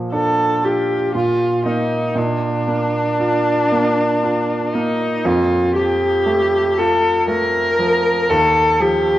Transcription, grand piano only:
Already playing: A#2 F3
0.12 D4
0.64 F4
1.15 A#2
1.65 A#3 D#4
2.15 A#2
2.68 A#3
3.20 F4
3.72 A#3
4.23 F4
4.75 A#3
5.25 F2
5.76 F3
6.26 A3
6.79 F4
7.28 A3
7.79 F3
8.30 D#2
8.80 F3

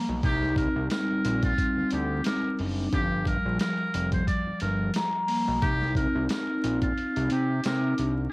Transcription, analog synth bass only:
0.09 B1
0.24 C2
0.76 C2
1.25 A#1
1.77 D2
1.92 D2
2.60 F#1
2.93 G1
3.46 A#1
3.95 F1
4.47 G1
4.62 G1
5.48 B1
5.63 C2
6.15 C2
6.64 A#1
7.16 C2
7.32 C3
7.65 C3
7.99 C2

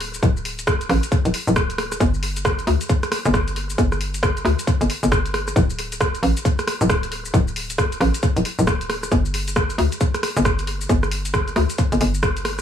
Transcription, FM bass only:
Already playing: D1
0.23 D1
0.89 A1
1.25 D1
1.47 D1
2.00 G1
2.67 D2
3.25 G1
3.78 G1
4.45 D2
4.81 G1
5.03 G1
5.56 D1
6.23 A1
6.81 D1
7.34 D1
8.01 A1
8.36 D1
8.59 D1
9.12 G1
9.78 D2
10.37 G1
10.89 G1
11.56 D2
11.92 G1
12.01 G1

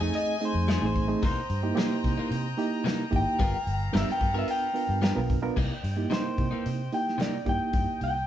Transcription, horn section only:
Already playing: A3 D#5 G#5
1.22 D#5 G5 A#5
3.40 B3 F5
5.56 D#5 G5

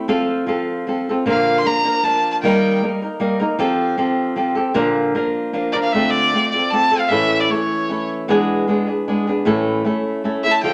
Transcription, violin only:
1.30 F5
1.58 C6
1.67 A#5
2.04 A5
2.32 A5
2.42 G5
5.72 D5
5.83 F5
5.93 E5
6.10 D5
6.51 D5
6.70 A5
6.99 F5
7.08 E5
7.40 D5
7.51 C#5
10.44 E5
10.52 A5
10.63 G5

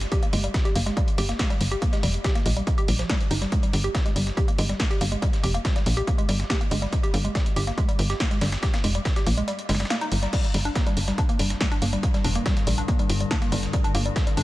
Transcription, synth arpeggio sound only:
0.12 G4
0.23 A#3
0.33 G#3
0.44 G3
0.65 G4
0.75 A#3
0.86 G#3
0.97 G3
1.18 G4
1.29 A#3
1.39 G#3
1.50 G3
1.71 G4
1.82 A#3
1.93 G#3
2.03 G3
2.24 G4
2.35 A#3
2.46 G#3
2.57 G3
2.78 G4
2.88 G3
2.99 F3
3.10 G3
3.31 D#4
3.42 G3
3.52 G#3
3.63 G3
3.84 G4
3.94 A#3
4.05 G#3
4.16 G3
4.37 G4
4.48 A#3
4.58 G#3
4.69 G3
4.91 G4
5.01 A#3
5.12 G#3
5.22 G3
5.43 G4
5.54 A#3
5.65 G#3
5.76 G3
5.97 G4
6.07 A#3
6.18 G#3
6.29 G3
6.50 G4
6.61 A#3
6.71 G#3
6.82 G3
7.03 G4
7.14 A#3
7.25 G#3
7.35 G3
7.56 G4
7.67 A#3
7.78 G#3
7.89 G3
8.10 G4
8.20 A#3
8.31 G#3
8.41 G3
8.63 G4
8.74 A#3
8.84 G#3
8.95 G3
9.16 G4
9.27 A#3
9.37 G#3
9.48 G3
9.69 G#3
9.80 G3
9.90 A#3
10.01 D#4
10.23 G3
10.33 G3
10.54 G3
10.65 D4
10.76 A#3
10.87 G3
11.08 G3
11.18 D4
11.29 A#3
11.39 G3
11.61 G3
11.72 D4
11.82 A#3
11.93 G3
12.14 G3
12.25 D4
12.35 A#3
12.46 G3
12.67 G3
12.78 D4
12.88 A#3
12.99 G3
13.21 G3
13.31 D4
13.42 A#3
13.52 G3
13.73 G3
13.84 D4
13.94 A#3
14.05 G3
14.27 G3
14.37 D4

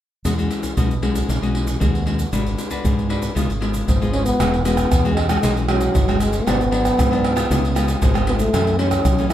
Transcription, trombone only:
4.12 C#4
4.25 B3
4.64 B3
5.15 G#3
5.41 G#3
5.67 F#3
6.19 G#3
6.45 B3
8.27 B3
8.39 A3
8.78 C#4
9.29 E4

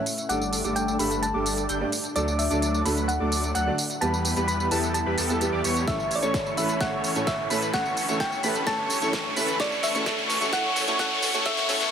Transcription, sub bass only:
0.29 G1
0.64 G1
0.99 G1
1.34 G1
1.69 G1
2.16 D2
2.50 D2
2.85 D2
3.20 D2
3.55 D2
4.02 E2
4.36 E2
4.71 E2
5.06 E2
5.18 E2
5.53 E2
5.64 E2
5.88 A1
6.22 A1
6.57 A1
6.81 A1
7.15 A2
7.50 A2
7.74 G1
8.09 G1
8.43 G1
8.67 G1
9.02 G2
9.36 G1
9.60 D2
9.95 D2
10.06 D2
10.41 D2
10.53 D2
10.88 D2
10.99 D2
11.34 D2
11.46 E2
11.69 E2

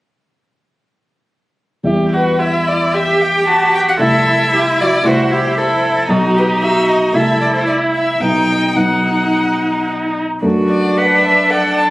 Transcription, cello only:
2.94 G4
4.01 A4
4.54 G4
4.81 F#4
5.07 E4
5.33 G4
5.58 A4
6.11 F#4
6.36 G4
6.63 F#4
7.16 A4
7.68 E4
8.22 D#4
10.44 F#4
10.97 B4
11.50 A4

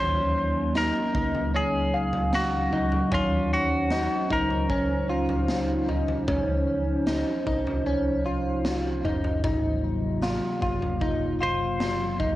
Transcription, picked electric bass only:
Already playing: D#2
1.15 C#2
2.72 C#2
3.12 D#2
4.31 C#2
6.28 C#2
7.47 C2
9.04 F#1
9.44 G#1
10.62 F#1

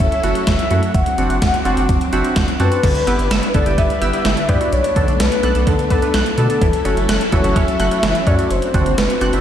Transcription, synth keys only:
0.24 A3 E4 F#4
0.71 A3 E4 F#4
1.18 C4 D4 F#4
1.65 C4 D4 F#4
2.13 C4 D4 F#4 E5
2.36 F#5
2.60 C4 D4 F#4 A5
3.07 B3 E4 G4
3.55 B3 E4 A4
3.66 B3 E4 G4
4.02 B3 E4 G4
4.14 B3 E4 G4
4.49 B3 E4 G4
4.61 B3 E4 F#4
4.96 B3 D4 A4
5.43 B3 D4 A4
5.55 B3 D4 A4
5.91 B3 D4 A4
6.02 B3 D4 B4
6.38 B3 D4 A4
6.50 B3 D4 A4
6.85 A3 E4 F#4
7.32 A3 E4 F#4
7.44 A3 E4 F#4
7.80 A3 E4 F#4
7.92 A3 E4 F#4
8.27 A3 E4 F#4
8.39 A3 E4 F#4
8.74 C4 D4 F#4
9.22 C4 D4 F#4
9.33 C4 D4 E4

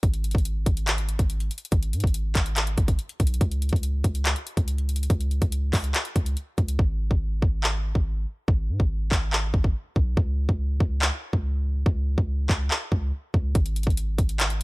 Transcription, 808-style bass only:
0.03 G#1
0.35 G#1
0.66 G#1
1.19 G#1
1.72 G#1
1.93 G#2
2.04 G#1
2.35 G#1
2.78 G#1
3.20 B1
3.41 C#2
3.73 C#2
4.04 C#2
4.57 C#2
5.10 C#2
5.42 C#2
5.73 C#2
6.16 C#2
6.58 C#2
6.79 G#1
7.11 G#1
7.42 G#1
7.95 G#1
8.48 G#1
8.69 G#2
8.80 G#1
9.11 G#1
9.54 G#1
9.96 B1
10.17 C#2
10.49 C#2
10.80 C#2
11.33 C#2
11.86 C#2
12.18 C#2
12.49 C#2
12.92 C#2
13.34 C#2
13.55 G#1
13.87 G#1
14.18 G#1

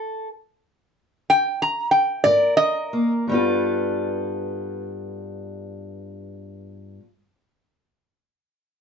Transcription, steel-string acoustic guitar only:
Already playing: G2 A4
2.25 G#2 A#4
2.93 A#3
3.27 G2 G3
3.32 B3 F4 A4

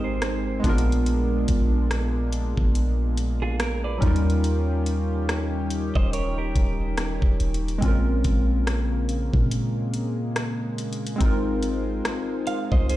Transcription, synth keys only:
Already playing: G#3 C4 D#4 G4 A#4
0.60 G#3 B3
0.65 D4 F4
0.69 A#4
3.98 F#3 C#4
4.03 G3 D#4 F4
4.07 A#4
7.78 G#3 C4
7.83 C#4 F4
7.88 A#4
11.16 G#3 C4
11.21 D#4 F4
11.25 A#4

